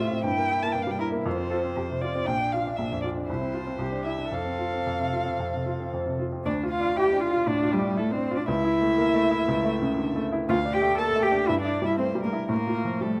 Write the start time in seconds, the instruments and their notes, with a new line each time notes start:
Already playing: grand piano A2 A3 C4
0.00 cello F4, grand piano F4, violin E5
0.11 grand piano C4
0.23 grand piano G2, cello E4, violin G5
0.38 grand piano A#3
0.50 grand piano E4
0.63 grand piano A#3, violin A5
0.72 grand piano G2, cello D4, violin G5
0.82 violin F5
0.87 grand piano G3
0.91 violin G5
0.99 cello E4, grand piano E4, violin A#4
1.12 grand piano A#3
1.26 grand piano F2, cello F4, violin C5
1.38 grand piano C4
1.50 grand piano F4, cello A4
1.64 grand piano C4
1.76 grand piano F2, cello G4
1.90 grand piano C3
2.01 grand piano F4, cello F4, violin D5
2.15 grand piano C4
2.27 grand piano A#1, cello D4, violin G5
2.41 grand piano D4
2.52 grand piano F4, violin F5
2.67 grand piano D4
2.77 grand piano A#1, violin E5
2.92 grand piano F2
3.02 grand piano F4, violin D5
3.17 grand piano D4
3.27 grand piano C2, cello E4, violin C5
3.41 grand piano C4
3.54 cello F4, grand piano F4
3.67 grand piano C4
3.79 grand piano C2, cello G4
3.92 grand piano D4
4.05 grand piano E4, violin E5
4.18 grand piano D4
4.31 grand piano F2, cello A4, violin F5
4.45 grand piano C4
4.59 grand piano F4
4.74 grand piano C4
4.87 grand piano F2
5.00 grand piano C3
5.13 grand piano F4
5.25 grand piano C4
5.39 grand piano F2
5.54 grand piano C3
5.66 grand piano F4
5.80 grand piano C4
5.93 grand piano F2
6.06 grand piano C3
6.19 grand piano F4
6.32 grand piano C4
6.45 grand piano D2, cello D4, violin D5
6.63 grand piano F4
6.71 cello F4, violin F5
6.80 grand piano D4
6.96 grand piano E4, cello G4, violin G5
7.13 grand piano D4
7.21 cello F4, violin F5
7.31 grand piano F4
7.46 grand piano A2, cello D4, violin D5
7.63 grand piano F4
7.72 cello G3, violin G4
7.79 grand piano D4
7.97 cello A3, grand piano E4, violin A4
8.11 cello C4, grand piano D4, violin C5
8.31 grand piano F4
8.36 cello D4, violin D5
8.48 grand piano C#2, cello E4, violin E5
8.64 grand piano E4
8.81 grand piano A3
8.98 grand piano A#3
9.15 grand piano A3
9.31 grand piano E4
9.48 grand piano C#2
9.65 grand piano A3
9.82 grand piano C#3
9.98 grand piano D3
10.16 grand piano A3
10.32 grand piano E4
10.49 grand piano D2, cello F4, violin F5
10.65 grand piano D4
10.73 cello G4, violin G5
10.82 grand piano A3
10.98 grand piano A#3, cello A4, violin A5
11.16 grand piano A3
11.23 cello G4, violin G5
11.32 grand piano D4
11.48 grand piano G2, cello E4, violin E5
11.60 cello D4, violin D5
11.65 grand piano E4
11.82 grand piano G3, cello E4
11.86 violin E5
11.98 grand piano A3, cello C4, violin C5
12.15 grand piano G3
12.23 cello A#3, violin A#4
12.33 grand piano E4
12.49 grand piano A2, cello A#3, violin A#4
12.67 grand piano F4
12.85 grand piano F3
13.01 grand piano G3, cello A3, violin A4